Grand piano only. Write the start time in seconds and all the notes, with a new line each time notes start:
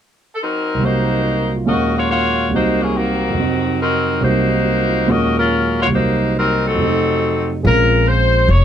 0.74 C2 C3
0.80 F#3 A#3
0.86 D#4
1.21 C5
1.33 A#4
1.46 F#4
1.55 F4
1.65 D#2 A#2 F#3 G#3 C#4 F5
2.49 C2 C3 F#3 A#3
2.54 D#4
3.30 F2 C3
3.36 F#3 C4
3.42 D#4
4.20 C2 C3 F#3 A#3 D#4
4.65 F#4
4.86 F4
5.07 D#2 A#2 F#3 G#3 C#4 F4
5.87 C2 C3
5.92 F#3 A#3
5.98 D#4
6.74 F2 C3
6.80 F#3 A3
6.85 D#4
7.63 G#3 C4 C#4 F4